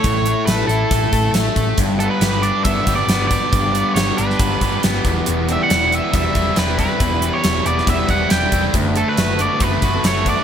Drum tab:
HH |x-x-x-x-x-x-x-x-|x-x-x-x-x-x-x-x-|x-x-x-x-x-x-x-x-|x-x-x-x-x-x-x-x-|
SD |----o-------o---|----o-------o---|----o--o----o---|----o-------o---|
BD |o-------o-o---o-|o-------o-o---o-|o-------o-o---o-|--------o-o---o-|

HH |x-x-x-x-x-x-x-x-|x-x-x-x-x-x-x-x-|
SD |----o--o----o---|----o-------o---|
BD |o-------o-o---o-|o-------o-o---o-|